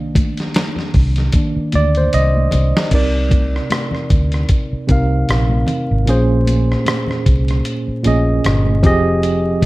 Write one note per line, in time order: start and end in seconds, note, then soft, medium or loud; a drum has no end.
0.00 0.36 C2 loud
0.00 1.35 D#3 medium
0.00 1.35 A#3 medium
0.00 1.35 D4 medium
0.15 kick medium
0.15 closed hi-hat medium
0.15 muted conga soft
0.15 high conga medium
0.37 snare soft
0.37 closed hi-hat soft
0.54 finger snap medium
0.54 snare loud
0.54 closed hi-hat medium
0.54 high conga medium
0.76 snare soft
0.76 low conga medium
0.94 1.28 C2 medium
0.94 kick medium
0.94 open hi-hat soft
0.94 muted conga soft
1.16 snare soft
1.16 closed hi-hat soft
1.33 1.70 D#3 soft
1.33 1.70 A#3 soft
1.33 1.70 D4 medium
1.33 kick medium
1.33 closed hi-hat medium
1.33 muted conga soft
1.56 muted fingered electric bass stroke soft
1.72 2.07 D2 medium
1.72 1.97 D5 loud
1.72 closed hi-hat medium
1.72 muted conga soft
1.72 high conga medium
1.95 2.14 C5 medium
1.95 closed hi-hat soft
2.13 2.46 C2 medium
2.13 2.88 D#5 medium
2.13 closed hi-hat medium
2.34 high conga medium
2.51 2.71 C2 medium
2.51 closed hi-hat medium
2.51 muted conga soft
2.51 low conga medium
2.77 snare medium
2.91 3.58 C2 medium
2.91 4.17 C3 medium
2.91 4.18 C4 medium
2.91 4.18 D#4 medium
2.91 4.19 A#4 medium
2.91 kick medium
2.91 closed hi-hat medium
2.91 crash medium
2.91 muted conga soft
2.95 4.19 D5 medium
3.30 kick medium
3.30 closed hi-hat medium
3.30 high conga medium
3.56 cross-stick soft
3.70 cross-stick medium
3.70 closed hi-hat medium
3.70 muted conga soft
3.70 high conga medium
3.91 cross-stick soft
3.91 low conga medium
4.09 4.44 D2 medium
4.09 kick medium
4.09 closed hi-hat medium
4.09 muted conga soft
4.32 cross-stick soft
4.32 closed hi-hat soft
4.49 kick medium
4.49 closed hi-hat medium
4.49 muted conga soft
4.73 muted fingered electric bass stroke soft
4.87 5.23 C2 medium
4.87 5.84 C3 medium
4.87 5.84 C4 medium
4.87 5.85 D#4 medium
4.87 5.85 A#4 medium
4.87 kick medium
4.87 closed hi-hat medium
4.87 muted conga soft
4.87 high conga soft
4.92 5.86 F5 medium
5.28 5.62 A#1 medium
5.28 cross-stick medium
5.28 closed hi-hat medium
5.28 muted conga soft
5.49 high conga medium
5.67 closed hi-hat medium
5.67 low conga medium
5.91 6.05 G#1 medium
6.05 6.74 A#1 medium
6.05 7.33 A#2 medium
6.05 7.33 A#3 medium
6.05 7.34 C#4 medium
6.05 7.34 G#4 medium
6.05 closed hi-hat medium
6.05 muted conga soft
6.10 7.35 C5 medium
6.45 closed hi-hat medium
6.45 high conga medium
6.72 cross-stick soft
6.85 cross-stick loud
6.85 closed hi-hat medium
6.85 muted conga soft
6.85 high conga medium
7.07 low conga medium
7.11 cross-stick soft
7.26 7.60 C2 medium
7.26 kick medium
7.26 closed hi-hat medium
7.26 muted conga soft
7.48 cross-stick soft
7.48 closed hi-hat soft
7.64 closed hi-hat medium
7.64 muted conga soft
7.88 muted fingered electric bass stroke soft
8.03 8.39 A#1 medium
8.03 8.83 A#2 medium
8.03 8.84 A#3 medium
8.03 8.84 C#4 medium
8.03 8.84 G#4 medium
8.03 closed hi-hat medium
8.03 high conga medium
8.07 8.85 D#5 medium
8.44 8.84 G1 medium
8.44 cross-stick loud
8.44 closed hi-hat medium
8.66 high conga medium
8.82 9.66 F1 medium
8.82 9.66 F3 medium
8.82 9.66 C4 medium
8.82 9.66 G4 medium
8.82 9.66 G#4 medium
8.82 kick loud
8.82 closed hi-hat medium
8.82 low conga medium
8.87 9.66 D#5 loud
9.22 closed hi-hat medium
9.22 muted conga soft
9.61 kick medium
9.61 closed hi-hat medium
9.61 high conga medium